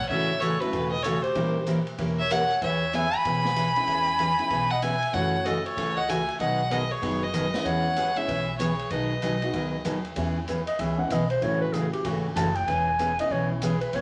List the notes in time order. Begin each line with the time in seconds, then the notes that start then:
0.09 A1 C#3 E3 F#3 A3 C#4 E4 F#4 C#5 E5, kick
0.40 C#3 E3 A3 C#4 F#4 A4 C#5, hi-hat pedal, ride
0.60 F#3 A3 C#4 E4 F#4 B4, ride
0.72 E1 C#3 E3 A3 C#4 F#4, kick, ride
0.91 B4 D#5
1.03 C#3 E3 A3 C#4 F#4 A4 C#5, hi-hat pedal, ride
1.23 G4 C5, ride
1.35 A#1 E3 G3 A#3 C#4 E4 G4 A#4, kick, ride
1.66 E3 A#3 C#4 G4 A#4, hi-hat pedal, ride
1.87 ride
1.98 E1 E3 A#3 C#4 G4 A#4, kick, ride
2.19 C#5 E5
2.30 E3 A#3 C#4 G4 A#4 C#5 F#5, hi-hat pedal, ride
2.50 ride
2.62 E2 E3 B3 C#4 G#4 C#5 E5, kick, ride
2.93 E3 B3 C#4 G#4 E5 G#5, hi-hat pedal, ride
3.13 G#5 B5, ride
3.25 B1 E3 B3 C#4 G#4, kick, ride
3.45 snare
3.56 E3 B3 C#4 G#4, hi-hat pedal, ride
3.76 G#3 B3 C#4 E4, ride
3.87 E2 E3 B3 C#4 G#4, kick, ride
4.19 E3 B3 C#4 G#4, hi-hat pedal, ride
4.39 G#3 B3 C#4 E4, ride
4.50 B1 E3 B3 C#4 G#4, kick, ride
4.70 D#5 F#5
4.82 E3 B3 C#4 G#4 E5 G#5, hi-hat pedal, ride
5.02 ride
5.13 F#2 C#3 E3 A3 C#4 E4 F#4 C#5 F#5, kick, ride
5.45 C#3 E3 A3 C#4 F#4 A4 D#5, hi-hat pedal, ride
5.65 A4 C#5, ride
5.77 C#2 C#3 E3 A3 C#4 F#4, kick, ride
5.97 D#5 F#5
6.08 C#3 E3 A3 C#4 F#4 E5 G#5, hi-hat pedal, ride
6.28 ride
6.39 B1 B2 D#3 F#3 B3 D#4 G#4 D#5 F#5, kick, ride
6.70 B2 D#3 F#3 B3 D#4 G#4 B4 D#5, hi-hat pedal, ride
6.91 G#4 C#5
7.02 F#1 B2 D#3 F#3 B3 D#4 G#4, kick, ride
7.22 B4 D#5
7.34 B2 D#3 F#3 B3 D#4 G#4, hi-hat pedal, ride
7.53 G#3 B3 C#4 E4, snare, ride
7.65 E2 E3 B3 C#4 G#4 C#5 F#5, kick, ride
7.96 E3 B3 C#4 G#4, hi-hat pedal, ride
8.15 G#3 B3 C#4 E4 C#5 E5, ride
8.28 B1 E3 B3 C#4 G#4, kick, ride
8.58 E3 B3 C#4 G#4 C#5, hi-hat pedal, ride
8.79 ride
8.90 B1 B2 D#3 F#3 B3 D#4 G#4 B4 D#5, kick, ride
9.22 B1 B2 D#3 F#3 B3 D#4 G#4, hi-hat pedal, ride
9.42 G#3 B3 D#4 F#4, ride
9.53 C#2 B2 D#3 F#3 B3 D#4 G#4, kick, ride
9.85 D#2 B2 D#3 F#3 B3 D#4 G#4, hi-hat pedal, ride
10.05 ride
10.15 E2 E3 G#3 B3 C#4 E4 G#4, kick, ride
10.48 E3 B3 C#4 G#4, kick, hi-hat pedal, ride
10.67 D#5, ride
10.79 C#2 E3 B3 C#4 G#4 E5, kick, ride
10.97 E3 G#3 B3 C#4 E4 F#5
11.10 B1 E3 B3 C#4 G#4 D#5, kick, hi-hat pedal, ride
11.30 C5, ride
11.41 A1 C#3 E3 F#3 A3 C#4 E4 F#4 C#5, kick, ride
11.60 B4
11.73 C#3 E3 A3 C#4 F#4 G#4, kick, hi-hat pedal, ride
11.93 G4, ride
12.05 G#1 C#3 E3 A3 C#4 F#4, kick, ride
12.36 F#1 C#3 E3 A3 C#4 F#4 A5, kick, hi-hat pedal, ride
12.55 G5, ride
12.67 E1 E3 B3 C#4 G#4 G#5, kick, ride
12.99 E3 B3 C#4 G#4, kick, hi-hat pedal, ride
13.19 E3 G#3 B3 C#4 E4 D#5, ride
13.31 B1 E3 B3 C#4 G#4 C#5, kick
13.51 E4
13.62 E3 B3 C#4 G#4, kick, hi-hat pedal, ride
13.81 B4, ride
13.93 E1 E3 B3 C#4 G#4 C#5, kick, ride